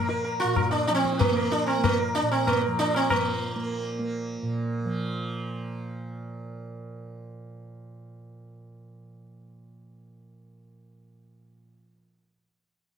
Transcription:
0, 0, Header, 1, 4, 480
1, 0, Start_track
1, 0, Tempo, 315292
1, 375, Time_signature, 3, 2, 24, 8
1, 6610, Tempo, 310238
1, 19973, End_track
2, 0, Start_track
2, 0, Title_t, "Sitar"
2, 0, Program_c, 0, 104
2, 138, Note_on_c, 0, 70, 42
2, 350, Note_off_c, 0, 70, 0
2, 368, Note_on_c, 0, 70, 45
2, 597, Note_off_c, 0, 70, 0
2, 605, Note_on_c, 0, 65, 114
2, 851, Note_on_c, 0, 70, 43
2, 1074, Note_off_c, 0, 65, 0
2, 1080, Note_off_c, 0, 70, 0
2, 1080, Note_on_c, 0, 62, 85
2, 1312, Note_off_c, 0, 62, 0
2, 1330, Note_on_c, 0, 62, 106
2, 1433, Note_off_c, 0, 62, 0
2, 1439, Note_on_c, 0, 60, 114
2, 1814, Note_on_c, 0, 58, 96
2, 1825, Note_off_c, 0, 60, 0
2, 2053, Note_on_c, 0, 70, 46
2, 2283, Note_off_c, 0, 70, 0
2, 2307, Note_on_c, 0, 62, 102
2, 2317, Note_off_c, 0, 58, 0
2, 2527, Note_off_c, 0, 62, 0
2, 2534, Note_on_c, 0, 60, 80
2, 2789, Note_off_c, 0, 60, 0
2, 2795, Note_on_c, 0, 58, 89
2, 3016, Note_off_c, 0, 58, 0
2, 3034, Note_on_c, 0, 70, 44
2, 3255, Note_off_c, 0, 70, 0
2, 3270, Note_on_c, 0, 62, 114
2, 3516, Note_off_c, 0, 62, 0
2, 3524, Note_on_c, 0, 60, 97
2, 3763, Note_off_c, 0, 60, 0
2, 3766, Note_on_c, 0, 58, 81
2, 3980, Note_off_c, 0, 58, 0
2, 4012, Note_on_c, 0, 70, 39
2, 4224, Note_off_c, 0, 70, 0
2, 4246, Note_on_c, 0, 62, 122
2, 4483, Note_off_c, 0, 62, 0
2, 4506, Note_on_c, 0, 60, 112
2, 4731, Note_off_c, 0, 60, 0
2, 4731, Note_on_c, 0, 58, 77
2, 6085, Note_off_c, 0, 58, 0
2, 19973, End_track
3, 0, Start_track
3, 0, Title_t, "Tanpura"
3, 0, Program_c, 1, 104
3, 0, Note_on_c, 1, 46, 62
3, 0, Note_on_c, 1, 53, 57
3, 0, Note_on_c, 1, 58, 79
3, 662, Note_off_c, 1, 46, 0
3, 668, Note_on_c, 1, 46, 72
3, 1367, Note_off_c, 1, 53, 0
3, 1373, Note_on_c, 1, 53, 76
3, 2010, Note_off_c, 1, 58, 0
3, 2010, Note_on_c, 1, 58, 69
3, 2710, Note_off_c, 1, 58, 0
3, 2710, Note_on_c, 1, 58, 75
3, 3377, Note_off_c, 1, 46, 0
3, 3383, Note_on_c, 1, 46, 69
3, 4065, Note_off_c, 1, 53, 0
3, 4072, Note_on_c, 1, 53, 70
3, 4715, Note_off_c, 1, 53, 0
3, 4715, Note_on_c, 1, 53, 65
3, 5410, Note_off_c, 1, 58, 0
3, 5410, Note_on_c, 1, 58, 70
3, 6070, Note_off_c, 1, 58, 0
3, 6070, Note_on_c, 1, 58, 73
3, 6730, Note_off_c, 1, 46, 0
3, 6737, Note_on_c, 1, 46, 75
3, 7402, Note_off_c, 1, 53, 0
3, 7402, Note_on_c, 1, 53, 68
3, 15182, Note_off_c, 1, 58, 0
3, 17799, Note_off_c, 1, 46, 0
3, 18241, Note_off_c, 1, 53, 0
3, 19973, End_track
4, 0, Start_track
4, 0, Title_t, "Tabla"
4, 132, Note_on_c, 9, 62, 69
4, 285, Note_off_c, 9, 62, 0
4, 379, Note_on_c, 9, 63, 85
4, 531, Note_off_c, 9, 63, 0
4, 858, Note_on_c, 9, 60, 85
4, 858, Note_on_c, 9, 64, 79
4, 1010, Note_off_c, 9, 60, 0
4, 1010, Note_off_c, 9, 64, 0
4, 1098, Note_on_c, 9, 62, 64
4, 1250, Note_off_c, 9, 62, 0
4, 1356, Note_on_c, 9, 62, 92
4, 1469, Note_off_c, 9, 62, 0
4, 1469, Note_on_c, 9, 62, 77
4, 1595, Note_on_c, 9, 37, 68
4, 1621, Note_off_c, 9, 62, 0
4, 1712, Note_on_c, 9, 62, 67
4, 1747, Note_off_c, 9, 37, 0
4, 1836, Note_on_c, 9, 63, 120
4, 1836, Note_on_c, 9, 64, 110
4, 1864, Note_off_c, 9, 62, 0
4, 1988, Note_off_c, 9, 63, 0
4, 1988, Note_off_c, 9, 64, 0
4, 2316, Note_on_c, 9, 62, 95
4, 2468, Note_off_c, 9, 62, 0
4, 2556, Note_on_c, 9, 60, 79
4, 2709, Note_off_c, 9, 60, 0
4, 2801, Note_on_c, 9, 60, 100
4, 2801, Note_on_c, 9, 64, 101
4, 2953, Note_off_c, 9, 60, 0
4, 2953, Note_off_c, 9, 64, 0
4, 3283, Note_on_c, 9, 62, 94
4, 3435, Note_off_c, 9, 62, 0
4, 3525, Note_on_c, 9, 60, 81
4, 3677, Note_off_c, 9, 60, 0
4, 3764, Note_on_c, 9, 60, 105
4, 3764, Note_on_c, 9, 64, 91
4, 3917, Note_off_c, 9, 60, 0
4, 3917, Note_off_c, 9, 64, 0
4, 4253, Note_on_c, 9, 62, 98
4, 4405, Note_off_c, 9, 62, 0
4, 4485, Note_on_c, 9, 60, 80
4, 4637, Note_off_c, 9, 60, 0
4, 4726, Note_on_c, 9, 60, 127
4, 4726, Note_on_c, 9, 64, 112
4, 4878, Note_off_c, 9, 60, 0
4, 4878, Note_off_c, 9, 64, 0
4, 19973, End_track
0, 0, End_of_file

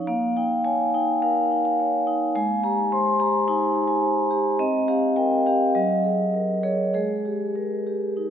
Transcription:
0, 0, Header, 1, 2, 480
1, 0, Start_track
1, 0, Key_signature, -4, "major"
1, 0, Tempo, 566572
1, 71, Time_signature, 4, 2, 24, 8
1, 4871, Tempo, 604230
1, 6897, End_track
2, 0, Start_track
2, 0, Title_t, "Vibraphone"
2, 0, Program_c, 0, 11
2, 0, Control_c, 0, 64, 127
2, 0, Note_on_c, 0, 53, 72
2, 0, Note_on_c, 0, 61, 60
2, 0, Note_on_c, 0, 63, 62
2, 0, Note_on_c, 0, 73, 69
2, 63, Note_on_c, 0, 58, 85
2, 63, Note_on_c, 0, 77, 109
2, 85, Control_c, 0, 64, 0
2, 86, Note_off_c, 0, 63, 0
2, 91, Note_off_c, 0, 61, 0
2, 94, Note_off_c, 0, 53, 0
2, 94, Note_off_c, 0, 73, 0
2, 240, Control_c, 0, 64, 127
2, 307, Note_off_c, 0, 77, 0
2, 310, Note_on_c, 0, 79, 100
2, 315, Note_on_c, 0, 63, 59
2, 547, Note_on_c, 0, 80, 105
2, 548, Note_on_c, 0, 73, 69
2, 551, Note_off_c, 0, 79, 0
2, 698, Note_off_c, 0, 63, 0
2, 790, Note_off_c, 0, 80, 0
2, 799, Note_on_c, 0, 63, 65
2, 799, Note_on_c, 0, 79, 107
2, 935, Note_off_c, 0, 73, 0
2, 1000, Note_off_c, 0, 58, 0
2, 1036, Note_on_c, 0, 77, 120
2, 1037, Note_off_c, 0, 79, 0
2, 1040, Note_on_c, 0, 70, 65
2, 1181, Note_off_c, 0, 63, 0
2, 1280, Note_on_c, 0, 63, 53
2, 1390, Note_off_c, 0, 77, 0
2, 1400, Note_on_c, 0, 77, 101
2, 1421, Note_off_c, 0, 70, 0
2, 1523, Note_on_c, 0, 73, 70
2, 1659, Note_off_c, 0, 63, 0
2, 1755, Note_on_c, 0, 63, 77
2, 1899, Note_off_c, 0, 73, 0
2, 1992, Note_off_c, 0, 63, 0
2, 1993, Note_off_c, 0, 77, 0
2, 1993, Note_on_c, 0, 56, 95
2, 1996, Note_on_c, 0, 80, 127
2, 2004, Control_c, 0, 64, 0
2, 2142, Control_c, 0, 64, 127
2, 2232, Note_off_c, 0, 80, 0
2, 2232, Note_on_c, 0, 67, 61
2, 2233, Note_on_c, 0, 82, 109
2, 2468, Note_off_c, 0, 82, 0
2, 2474, Note_on_c, 0, 72, 75
2, 2477, Note_on_c, 0, 84, 120
2, 2609, Note_off_c, 0, 67, 0
2, 2703, Note_on_c, 0, 67, 66
2, 2707, Note_off_c, 0, 84, 0
2, 2710, Note_on_c, 0, 82, 118
2, 2848, Note_off_c, 0, 72, 0
2, 2913, Note_off_c, 0, 56, 0
2, 2944, Note_off_c, 0, 82, 0
2, 2947, Note_on_c, 0, 80, 125
2, 2948, Note_on_c, 0, 63, 76
2, 3083, Note_off_c, 0, 67, 0
2, 3179, Note_on_c, 0, 67, 62
2, 3273, Note_off_c, 0, 80, 0
2, 3283, Note_on_c, 0, 80, 103
2, 3324, Note_off_c, 0, 63, 0
2, 3410, Note_on_c, 0, 72, 68
2, 3559, Note_off_c, 0, 67, 0
2, 3648, Note_on_c, 0, 67, 74
2, 3797, Note_off_c, 0, 72, 0
2, 3891, Note_off_c, 0, 80, 0
2, 3891, Note_on_c, 0, 60, 91
2, 3891, Note_on_c, 0, 75, 124
2, 3894, Note_off_c, 0, 67, 0
2, 3913, Control_c, 0, 64, 0
2, 4037, Control_c, 0, 64, 127
2, 4133, Note_on_c, 0, 67, 63
2, 4137, Note_on_c, 0, 77, 90
2, 4138, Note_off_c, 0, 75, 0
2, 4374, Note_on_c, 0, 79, 123
2, 4377, Note_on_c, 0, 70, 76
2, 4383, Note_off_c, 0, 77, 0
2, 4527, Note_off_c, 0, 67, 0
2, 4622, Note_off_c, 0, 79, 0
2, 4629, Note_on_c, 0, 77, 97
2, 4633, Note_on_c, 0, 67, 68
2, 4769, Note_off_c, 0, 70, 0
2, 4837, Note_off_c, 0, 60, 0
2, 4871, Note_off_c, 0, 77, 0
2, 4871, Note_on_c, 0, 54, 84
2, 4873, Note_off_c, 0, 67, 0
2, 4873, Note_on_c, 0, 75, 111
2, 4884, Control_c, 0, 64, 0
2, 5024, Control_c, 0, 64, 127
2, 5099, Note_on_c, 0, 68, 58
2, 5340, Note_on_c, 0, 70, 57
2, 5480, Note_off_c, 0, 68, 0
2, 5572, Note_on_c, 0, 68, 65
2, 5573, Note_on_c, 0, 73, 100
2, 5579, Note_off_c, 0, 75, 0
2, 5726, Note_off_c, 0, 70, 0
2, 5793, Note_off_c, 0, 54, 0
2, 5808, Note_off_c, 0, 68, 0
2, 5818, Note_on_c, 0, 68, 90
2, 5819, Note_off_c, 0, 73, 0
2, 5822, Note_on_c, 0, 56, 75
2, 5836, Control_c, 0, 64, 0
2, 5959, Control_c, 0, 64, 127
2, 6065, Note_on_c, 0, 67, 61
2, 6305, Note_on_c, 0, 70, 61
2, 6454, Note_off_c, 0, 67, 0
2, 6552, Note_on_c, 0, 67, 59
2, 6693, Note_off_c, 0, 70, 0
2, 6763, Note_off_c, 0, 56, 0
2, 6791, Note_on_c, 0, 63, 59
2, 6897, Note_off_c, 0, 63, 0
2, 6897, Note_off_c, 0, 67, 0
2, 6897, Note_off_c, 0, 68, 0
2, 6897, End_track
0, 0, End_of_file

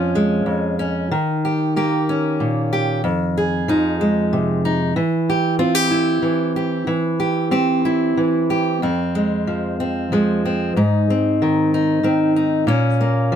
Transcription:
0, 0, Header, 1, 2, 480
1, 0, Start_track
1, 0, Key_signature, -4, "minor"
1, 0, Tempo, 641026
1, 840, Time_signature, 3, 2, 24, 8
1, 4669, Tempo, 648649
1, 7549, Tempo, 636943
1, 9982, End_track
2, 0, Start_track
2, 0, Title_t, "Steel-string acoustic guitar"
2, 0, Program_c, 0, 25
2, 0, Note_on_c, 0, 41, 71
2, 0, Note_on_c, 0, 53, 61
2, 0, Note_on_c, 0, 61, 54
2, 0, Note_on_c, 0, 65, 55
2, 115, Note_on_c, 0, 56, 56
2, 336, Note_off_c, 0, 41, 0
2, 345, Note_on_c, 0, 41, 53
2, 584, Note_off_c, 0, 61, 0
2, 593, Note_on_c, 0, 61, 53
2, 805, Note_off_c, 0, 53, 0
2, 809, Note_off_c, 0, 61, 0
2, 835, Note_on_c, 0, 51, 72
2, 836, Note_off_c, 0, 41, 0
2, 841, Note_off_c, 0, 65, 0
2, 843, Note_off_c, 0, 56, 0
2, 1084, Note_on_c, 0, 67, 57
2, 1314, Note_off_c, 0, 67, 0
2, 1321, Note_on_c, 0, 58, 63
2, 1325, Note_on_c, 0, 67, 62
2, 1567, Note_on_c, 0, 61, 52
2, 1799, Note_on_c, 0, 46, 55
2, 2033, Note_off_c, 0, 67, 0
2, 2042, Note_on_c, 0, 67, 62
2, 2251, Note_off_c, 0, 58, 0
2, 2252, Note_off_c, 0, 67, 0
2, 2253, Note_off_c, 0, 61, 0
2, 2275, Note_on_c, 0, 41, 69
2, 2278, Note_off_c, 0, 46, 0
2, 2528, Note_on_c, 0, 68, 52
2, 2755, Note_off_c, 0, 51, 0
2, 2758, Note_on_c, 0, 53, 62
2, 2764, Note_on_c, 0, 63, 62
2, 3002, Note_on_c, 0, 56, 51
2, 3241, Note_on_c, 0, 48, 62
2, 3473, Note_off_c, 0, 63, 0
2, 3482, Note_on_c, 0, 63, 61
2, 3686, Note_off_c, 0, 53, 0
2, 3688, Note_off_c, 0, 48, 0
2, 3690, Note_off_c, 0, 63, 0
2, 3691, Note_off_c, 0, 68, 0
2, 3713, Note_off_c, 0, 41, 0
2, 3715, Note_on_c, 0, 52, 74
2, 3717, Note_off_c, 0, 56, 0
2, 3965, Note_on_c, 0, 67, 63
2, 4184, Note_off_c, 0, 67, 0
2, 4185, Note_on_c, 0, 60, 64
2, 4187, Note_on_c, 0, 65, 68
2, 4304, Note_off_c, 0, 65, 0
2, 4304, Note_on_c, 0, 67, 55
2, 4424, Note_on_c, 0, 64, 53
2, 4651, Note_off_c, 0, 52, 0
2, 4660, Note_on_c, 0, 52, 58
2, 4902, Note_off_c, 0, 67, 0
2, 4911, Note_on_c, 0, 67, 66
2, 5114, Note_off_c, 0, 52, 0
2, 5116, Note_off_c, 0, 64, 0
2, 5121, Note_off_c, 0, 67, 0
2, 5139, Note_on_c, 0, 52, 72
2, 5381, Note_on_c, 0, 67, 60
2, 5609, Note_off_c, 0, 67, 0
2, 5611, Note_off_c, 0, 60, 0
2, 5614, Note_on_c, 0, 60, 66
2, 5618, Note_on_c, 0, 67, 63
2, 5865, Note_on_c, 0, 64, 56
2, 6095, Note_off_c, 0, 52, 0
2, 6104, Note_on_c, 0, 52, 59
2, 6337, Note_off_c, 0, 67, 0
2, 6346, Note_on_c, 0, 67, 62
2, 6561, Note_off_c, 0, 60, 0
2, 6563, Note_off_c, 0, 67, 0
2, 6564, Note_off_c, 0, 52, 0
2, 6566, Note_off_c, 0, 64, 0
2, 6584, Note_on_c, 0, 41, 65
2, 6590, Note_on_c, 0, 60, 52
2, 6827, Note_on_c, 0, 56, 55
2, 7065, Note_on_c, 0, 53, 54
2, 7304, Note_off_c, 0, 60, 0
2, 7307, Note_on_c, 0, 60, 50
2, 7540, Note_off_c, 0, 53, 0
2, 7541, Note_off_c, 0, 56, 0
2, 7543, Note_on_c, 0, 53, 54
2, 7550, Note_on_c, 0, 56, 50
2, 7787, Note_off_c, 0, 60, 0
2, 7796, Note_on_c, 0, 60, 54
2, 8026, Note_off_c, 0, 41, 0
2, 8029, Note_on_c, 0, 44, 64
2, 8031, Note_off_c, 0, 60, 0
2, 8034, Note_on_c, 0, 63, 52
2, 8057, Note_off_c, 0, 53, 0
2, 8273, Note_off_c, 0, 56, 0
2, 8284, Note_on_c, 0, 60, 52
2, 8522, Note_on_c, 0, 51, 63
2, 8755, Note_off_c, 0, 63, 0
2, 8765, Note_on_c, 0, 63, 52
2, 8978, Note_off_c, 0, 51, 0
2, 8981, Note_off_c, 0, 60, 0
2, 8986, Note_on_c, 0, 51, 54
2, 8993, Note_on_c, 0, 60, 53
2, 9225, Note_off_c, 0, 63, 0
2, 9234, Note_on_c, 0, 63, 51
2, 9441, Note_off_c, 0, 44, 0
2, 9441, Note_off_c, 0, 60, 0
2, 9444, Note_off_c, 0, 63, 0
2, 9464, Note_on_c, 0, 46, 71
2, 9468, Note_off_c, 0, 51, 0
2, 9475, Note_on_c, 0, 61, 62
2, 9719, Note_on_c, 0, 58, 52
2, 9955, Note_on_c, 0, 53, 63
2, 9982, Note_off_c, 0, 46, 0
2, 9982, Note_off_c, 0, 53, 0
2, 9982, Note_off_c, 0, 58, 0
2, 9982, Note_off_c, 0, 61, 0
2, 9982, End_track
0, 0, End_of_file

